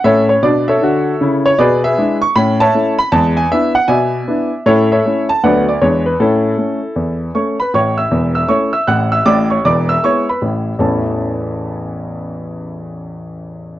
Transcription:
X:1
M:4/4
L:1/8
Q:"Swing" 1/4=156
K:A
V:1 name="Grand piano"
[Ace] c d [Ace]4 c | [GBd] [GBe]2 c' b [cea]2 b | a g e f [deg]4 | [EAc] [Ace]2 a [Bdf] d c B |
[CEA]6 [cc'] [Bb] | [cc'] [ee']2 [ee'] [cc'] [ee'] [ff'] [ee'] | [dd'] [cc'] [dd'] [ee'] [cc'] [Bb] z2 | [A,,,E,,E,A,CEa]8- |
[A,,,E,,E,A,CEa]8 |]
V:2 name="Grand piano"
[A,,C]2 [B,,D]2 [D,F]2 [C,E]2 | B,,2 [G,DE]2 [A,,C]2 [A,CE]2 | [E,,G,]2 [B,DE]2 B,,2 [B,DE]2 | [A,,C]2 [A,CE]2 [D,,F,A,B,D]2 [E,,G,B,D]2 |
A,,2 [A,C]2 E,,2 [A,C]2 | [A,,,A,,]2 [E,,,E,,]2 [A,CE]2 [A,,,A,,]2 | [A,,,A,,]2 [E,,,E,,]2 [G,B,E]2 [A,,,A,,]2 | z8 |
z8 |]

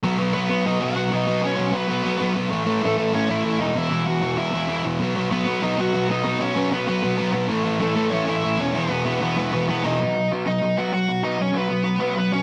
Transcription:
X:1
M:4/4
L:1/16
Q:1/4=192
K:B
V:1 name="Lead electric guitar"
z4 [B,B]4 [Dd]2 [Ff]4 [Dd]2- | [Dd]2 [Cc]4 [B,B]2 [B,B]6 z2 | z4 [=A,=A]4 [Cc]2 [Ee]4 [Dd]2 | [Ee]4 [Ff]4 [Ee]6 z2 |
z4 [B,B]4 [Dd]2 [Ff]4 [Dd]2- | [Dd]2 [Cc]4 [B,B]2 [B,B]6 z2 | z4 [=A,=A]4 [Cc]2 [Ee] [Ee]3 [Cc]2 | [B,B]12 [B,B]2 [Dd]2- |
[Dd]4 z2 [Dd]4 [Ff]2 [Ff]4 | [Dd]2 [Cc]2 [B,B]8 [B,B]2 [Cc]2 |]
V:2 name="Distorted electric guitar" clef=bass
[B,,F,B,]2 [B,,F,B,]2 [B,,F,B,]2 [B,,F,B,]2 [B,,F,B,]2 [B,,F,B,]2 [B,,F,B,]2 [B,,F,B,]2 | [B,,F,B,]2 [B,,F,B,]2 [B,,F,B,]2 [B,,F,B,]2 [B,,F,B,]2 [B,,F,B,]2 [B,,F,B,]2 [B,,F,B,]2 | [=A,,E,=A,]2 [A,,E,A,]2 [A,,E,A,]2 [A,,E,A,]2 [A,,E,A,]2 [A,,E,A,]2 [A,,E,A,]2 [E,,B,,E,]2 | [E,,B,,E,]2 [E,,B,,E,]2 [E,,B,,E,]2 [E,,B,,E,]2 [E,,B,,E,]2 [E,,B,,E,]2 [E,,B,,E,]2 [E,,B,,E,]2 |
[B,,F,B,]2 [B,,F,B,]2 [B,,F,B,]2 [B,,F,B,]2 [B,,F,B,]2 [B,,F,B,]2 [B,,F,B,]2 [B,,F,B,]2 | [B,,F,B,]2 [B,,F,B,]2 [B,,F,B,]2 [B,,F,B,]2 [B,,F,B,]2 [B,,F,B,]2 [B,,F,B,]2 [B,,F,B,]2 | [=A,,E,=A,]2 [A,,E,A,]2 [A,,E,A,]2 [A,,E,A,]2 [A,,E,A,]2 [A,,E,A,]2 [A,,E,A,]2 [E,,B,,E,]2 | [E,,B,,E,]2 [E,,B,,E,]2 [E,,B,,E,]2 [E,,B,,E,]2 [E,,B,,E,]2 [E,,B,,E,]2 [E,,B,,E,]2 [E,,B,,E,]2 |
z16 | z16 |]
V:3 name="Overdriven electric guitar" clef=bass
[B,,F,B,]2 [B,,F,B,]2 [B,,F,B,]2 [B,,F,B,]2 [B,,F,B,]2 [B,,F,B,]2 [B,,F,B,]2 [B,,F,B,]2 | [B,,F,B,]2 [B,,F,B,]2 [B,,F,B,]2 [B,,F,B,]2 [B,,F,B,]2 [B,,F,B,]2 [B,,F,B,]2 [B,,F,B,]2 | [=A,,E,=A,]2 [A,,E,A,]2 [A,,E,A,]2 [A,,E,A,]2 [A,,E,A,]2 [A,,E,A,]2 [A,,E,A,]2 [E,,B,,E,]2 | [E,,B,,E,]2 [E,,B,,E,]2 [E,,B,,E,]2 [E,,B,,E,]2 [E,,B,,E,]2 [E,,B,,E,]2 [E,,B,,E,]2 [E,,B,,E,]2 |
[B,,F,B,]2 [B,,F,B,]2 [B,,F,B,]2 [B,,F,B,]2 [B,,F,B,]2 [B,,F,B,]2 [B,,F,B,]2 [B,,F,B,]2 | [B,,F,B,]2 [B,,F,B,]2 [B,,F,B,]2 [B,,F,B,]2 [B,,F,B,]2 [B,,F,B,]2 [B,,F,B,]2 [B,,F,B,]2 | [=A,,E,=A,]2 [A,,E,A,]2 [A,,E,A,]2 [A,,E,A,]2 [A,,E,A,]2 [A,,E,A,]2 [A,,E,A,]2 [E,,B,,E,]2 | [E,,B,,E,]2 [E,,B,,E,]2 [E,,B,,E,]2 [E,,B,,E,]2 [E,,B,,E,]2 [E,,B,,E,]2 [E,,B,,E,]2 [E,,B,,E,]2 |
[B,,F,B,]2 [B,,F,]2 [B,,F,B,]2 [B,,F,]2 [B,,F,]2 [B,,F,B,]2 [B,,F,]2 [B,,F,]2 | [B,,F,B,]2 [B,,F,]2 [B,,F,B,]2 [B,,F,]2 [B,,F,]2 [B,,F,B,]2 [B,,F,]2 [B,,F,]2 |]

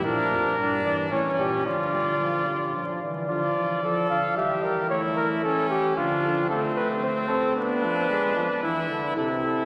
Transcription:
X:1
M:3/4
L:1/8
Q:1/4=112
K:Dm
V:1 name="Cornet"
B3 d ^c G | d4- d z | d3 f e B | ^c B A G F2 |
A =B c A B2- | =B4 A A |]
V:2 name="Trumpet"
D2 D2 ^C2 | F4- F z | F2 A2 G2 | E2 ^C2 D2 |
C2 C2 D2- | D2 E2 E2 |]
V:3 name="Trombone" clef=bass
F,2 G, E, E,2 | F, G, F, G, F, E, | F,2 F,2 G,2 | A,2 E,2 F,2 |
A,3 C =B, F, | ^G, F, E, D, C,2 |]
V:4 name="Bass trombone" clef=bass
B,, F,, G,,2 A,, B,, | D,4- D, z | D, E, F, D, E,2- | E,4 D, D, |
z6 | z6 |]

